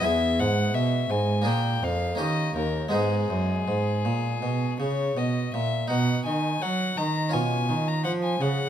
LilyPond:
<<
  \new Staff \with { instrumentName = "Violin" } { \time 4/4 \key gis \minor \tempo 4 = 83 e''8 fis''8 e''8 gis''8 g''8 eis''8 dis''8 ais'8 | gis'2~ gis'8 cis''8 dis''8 e''8 | \key b \major fis''8 gis''8 fis''8 ais''8 gis''8. ais''16 fis''16 gis''16 fis''8 | }
  \new Staff \with { instrumentName = "Harpsichord" } { \time 4/4 \key gis \minor <b e' gis'>2 <ais d' gis'>4 <ais cis' g'>4 | <gis b dis'>1 | \key b \major dis'2 <cis' eis'>2 | }
  \new Staff \with { instrumentName = "Harpsichord" } { \clef bass \time 4/4 \key gis \minor e,8 gis,8 b,8 gis,8 ais,8 eis,8 dis8 dis,8 | gis,8 fis,8 gis,8 ais,8 b,8 cis8 b,8 ais,8 | \key b \major b,8 dis8 fis8 dis8 b,8 dis8 eis8 cis8 | }
  \new Staff \with { instrumentName = "Cello" } { \clef bass \time 4/4 \key gis \minor e,8 gis,8 b,8 gis,8 ais,8 eis,8 dis8 dis,8 | gis,8 fis,8 gis,8 ais,8 b,8 cis8 b,8 ais,8 | \key b \major b,8 dis8 fis8 dis8 b,8 dis8 eis8 cis8 | }
>>